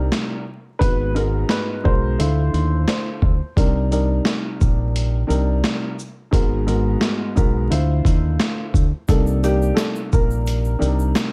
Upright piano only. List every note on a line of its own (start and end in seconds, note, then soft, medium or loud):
0.79 1.11 B4 loud
1.16 1.47 A#4 medium
1.50 1.81 B4 medium
1.85 2.84 C5 medium
2.88 3.19 C5 medium
9.09 9.40 A4 medium
9.44 9.75 G4 loud
9.74 10.07 A4 medium
10.14 11.12 A#4 medium